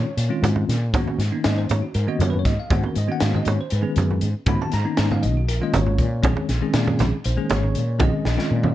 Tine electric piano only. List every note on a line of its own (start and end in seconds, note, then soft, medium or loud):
0.00 0.40 C#5 medium
0.29 0.74 D#3 medium
0.29 0.74 G#3 medium
0.29 0.75 C4 medium
0.29 0.74 C#4 medium
0.29 0.75 F4 medium
0.94 1.20 D#3 medium
0.94 1.20 A#3 medium
0.94 1.20 B3 medium
0.94 1.21 C#4 medium
0.94 1.21 F#4 loud
1.32 1.85 D#3 medium
1.32 1.85 A#3 medium
1.32 1.85 B3 medium
1.32 1.85 C#4 medium
1.32 1.85 D#4 medium
1.45 1.57 D#5 medium
1.58 1.69 C5 medium
1.71 1.82 C#5 medium
1.82 1.94 F#4 soft
1.95 2.07 A#4 medium
2.07 2.51 D#3 medium
2.07 2.51 A#3 medium
2.07 2.51 B3 medium
2.07 2.52 C#4 medium
2.07 2.52 F#4 medium
2.07 2.20 D#5 medium
2.22 2.29 C#5 medium
2.30 2.37 B4 medium
2.39 2.46 C#5 medium
2.46 2.58 D#5 medium
2.60 2.71 F5 medium
2.70 2.97 D#3 medium
2.70 2.97 A#3 medium
2.70 2.97 B3 medium
2.70 2.97 C#4 medium
2.70 2.97 F#4 medium
2.70 2.84 F#5 medium
2.86 2.97 A#4 medium
2.98 3.09 D#5 medium
3.07 3.61 D#3 medium
3.07 3.61 A#3 medium
3.07 3.61 B3 medium
3.07 3.61 C#4 medium
3.07 3.62 F#4 medium
3.12 3.22 F#5 loud
3.23 3.34 F5 medium
3.36 3.47 D#5 medium
3.48 3.59 C#5 medium
3.61 3.72 C5 medium
3.73 4.19 B4 medium
3.81 4.27 D#3 medium
3.81 4.27 G#3 medium
3.81 4.27 B3 medium
3.81 4.28 C#4 medium
3.81 4.28 G#4 medium
4.46 4.73 D#3 medium
4.46 4.73 A#3 medium
4.46 4.73 B3 medium
4.46 4.73 C#4 medium
4.46 4.74 F#4 medium
4.46 4.60 B5 medium
4.62 4.73 A5 medium
4.74 5.08 A#5 loud
4.84 5.37 D#3 medium
4.84 5.38 A#3 medium
4.84 5.38 B3 medium
4.84 5.38 C#4 medium
4.84 5.38 D#4 medium
5.11 5.23 F5 medium
5.23 5.35 D#5 medium
5.37 5.48 F#4 medium
5.48 5.60 A#4 medium
5.60 6.05 D#3 medium
5.60 6.05 G#3 medium
5.60 6.05 A#3 medium
5.60 6.05 C#4 medium
5.60 6.05 F4 medium
5.60 5.74 D#5 medium
5.75 6.46 C#5 medium
6.22 6.50 D#3 medium
6.22 6.50 G#3 medium
6.22 6.50 C4 medium
6.22 6.50 C#4 medium
6.22 6.50 G#4 medium
6.61 7.14 D#3 medium
6.61 7.15 G#3 medium
6.61 7.14 C4 medium
6.61 7.15 C#4 medium
6.61 7.15 G#4 medium
7.26 7.49 C5 medium
7.36 7.81 D#3 medium
7.36 7.81 G#3 medium
7.36 7.81 A#3 medium
7.36 7.82 C#4 medium
7.36 7.81 G#4 medium
7.51 7.97 C#5 loud
7.99 8.26 D#3 medium
7.99 8.26 G#3 medium
7.99 8.26 C4 medium
7.99 8.26 C#4 medium
7.99 8.26 G#4 medium
7.99 8.73 D#5 medium
8.37 8.75 D#3 medium
8.37 8.75 G#3 medium
8.37 8.75 C4 medium
8.37 8.75 C#4 medium
8.37 8.75 F4 medium